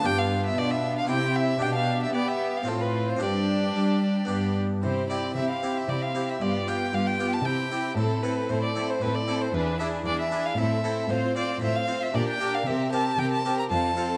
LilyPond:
<<
  \new Staff \with { instrumentName = "Violin" } { \time 3/4 \key c \major \tempo 4 = 115 g''16 f''8 e''16 d''16 e''8 f''16 g''8 e''8 | g''16 f''8 e''16 d''16 e''8 f''16 a'16 b'8 c''16 | d''2~ d''8 r8 | c''8 d''8 e''16 f''8 e''16 d''16 f''8 e''16 |
d''8 g''8 f''16 g''8 a''16 g''4 | a'8 b'8 c''16 d''8 c''16 b'16 d''8 c''16 | b'8 e''8 d''16 e''8 f''16 e''4 | \key c \mixolydian c''8 d''8 e''16 f''8 e''16 d''16 g''8 f''16 |
e''8 a''8 g''16 a''8 bes''16 a''4 | }
  \new Staff \with { instrumentName = "Violin section" } { \time 3/4 \key c \major f'2 g'4 | g'2 f'4 | g'2 g'8 r8 | g'8 g'8 g'8 g'8 g'8 g'8 |
g'8 g'8 g'8 g'8 g'8 g'8 | a'8 a'8 a'8 a'8 a'8 a'8 | gis'8 gis'8 gis'8 gis'8 a'8 a'8 | \key c \mixolydian c''8 c''8 c''8 c''8 bes'8 bes'8 |
bes'8 bes'8 bes'8 bes'8 a'8 a'8 | }
  \new Staff \with { instrumentName = "Violin section" } { \time 3/4 \key c \major d'2 e'4 | d'4 g'4 f'4 | d'2 d'8 r8 | e'8 e'8 e'8 e'8 e'8 e'8 |
f'8 f'8 f'8 f'8 e'8 e'8 | e'8 e'8 e'8 e'8 e'8 e'8 | e'8 e'8 e'8 e'8 e'8 e'8 | \key c \mixolydian f'8 f'8 f'8 f'8 g'8 g'8 |
g'8 g'8 g'8 g'8 f'8 f'8 | }
  \new Staff \with { instrumentName = "Harpsichord" } { \time 3/4 \key c \major <b d' g'>2 <e' g'>4 | <d' g'>2 <c' f'>4 | <c' d' g'>2 <b d' g'>4 | r8 <c' e' g'>4 <c' e' g'>4 <c' e' g'>8 |
r8 <b f' g'>4 <b f' g'>8 r8 <c' e' g'>8 | r8 <c' e' a'>4 <c' e' a'>4 <c' e' a'>8 | r8 <d' e' gis'>4 <d' e' gis'>8 r8 <c' e' a'>8 | \key c \mixolydian r8 <c' f' c''>4 <c' f' c''>8 r8 <d' g' bes'>8 |
r8 <c' g' bes'>4 <c' g' bes'>8 r8 <c' f' a'>8 | }
  \new Staff \with { instrumentName = "Harpsichord" } { \clef bass \time 3/4 \key c \major g,4 b,4 c4 | b,4 b4 a,4 | g,4 g4 g,4 | c4 c4 c4 |
g,4 g,4 c4 | a,4 a,4 a,4 | e,4 e,4 a,4 | \key c \mixolydian a,4 a,4 bes,4 |
c4 c4 f,4 | }
  \new Staff \with { instrumentName = "Viola section" } { \time 3/4 \key c \major b2 c'4 | d'4 b4 c'4 | d'2 b8 r8 | c'8 c'8 c'8 c'8 c'8 c'8 |
b8 b8 b8 b8 c'8 c'8 | c'8 c'8 c'8 c'8 c'8 c'8 | d'8 d'8 d'8 d'8 c'8 c'8 | \key c \mixolydian c'8 c'8 c'8 c'8 d'8 d'8 |
c'8 c'8 c'8 c'8 c'8 c'8 | }
  \new Staff \with { instrumentName = "Cello section" } { \clef bass \time 3/4 \key c \major g,4 b,4 c4 | b,4 b4 a,4 | g,4 g4 g,4 | c4 c4 c4 |
g,4 g,4 c4 | a,4 a,4 a,4 | e,4 e,4 a,4 | \key c \mixolydian a,4 a,4 bes,4 |
c4 c4 f,4 | }
>>